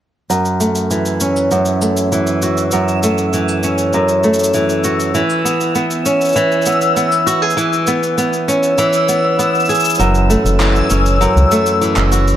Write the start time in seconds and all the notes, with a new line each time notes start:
0.29 F#2 E6, cabasa
0.45 cabasa
0.60 A3, cabasa
0.75 cabasa
0.91 E3, cabasa
1.06 cabasa
1.20 C#4, cabasa
1.36 cabasa
1.51 F#2, cabasa
1.66 cabasa
1.82 A3, cabasa
1.97 cabasa
2.12 E3, cabasa
2.27 cabasa
2.42 F#4, cabasa
2.57 cabasa
2.71 F#2, cabasa
2.88 cabasa
3.03 A3, cabasa
3.18 cabasa
3.33 E3, cabasa
3.48 cabasa
3.63 C#4, cabasa
3.78 cabasa
3.93 F#2, cabasa
4.09 cabasa
4.23 A3, cabasa
4.34 cabasa
4.39 cabasa
4.44 cabasa
4.54 E3, cabasa
4.69 cabasa
4.84 F#4, cabasa
5.00 cabasa
5.15 E3, cabasa
5.30 cabasa
5.45 B3, cabasa
5.61 cabasa
5.75 B3, cabasa
5.91 cabasa
6.06 C#4, cabasa
6.21 cabasa
6.25 cabasa
6.29 cabasa
6.32 E3, cabasa
6.36 cabasa
6.52 cabasa
6.62 cabasa
6.66 B3, cabasa
6.81 cabasa
6.96 B3, cabasa
7.12 cabasa
7.27 F#4, cabasa
7.42 G#4
7.50 cabasa
7.57 E3, cabasa
7.73 cabasa
7.87 B3, cabasa
8.03 cabasa
8.18 B3, cabasa
8.33 cabasa
8.48 C#4, cabasa
8.63 cabasa
8.78 E3, cabasa
8.93 cabasa
9.09 B3, cabasa
9.39 B3, cabasa
9.55 cabasa
9.60 cabasa
9.65 cabasa
9.69 G#4, cabasa
9.75 cabasa
9.80 cabasa
9.84 cabasa
9.90 cabasa
9.95 cabasa
9.99 F#1 F#2, cabasa
10.15 cabasa
10.30 A3, cabasa
10.45 F#1, cabasa
10.60 E3, clap, cabasa
10.62 clap
10.65 clap
10.67 clap
10.70 clap
10.72 clap, cabasa
10.90 F#1 C#4, cabasa
11.06 cabasa
11.21 F#2, cabasa
11.36 C#2, cabasa
11.51 A3, cabasa
11.66 cabasa
11.81 E3, cabasa
11.96 F#1, clap, cabasa
12.12 F#4, cabasa
12.28 cabasa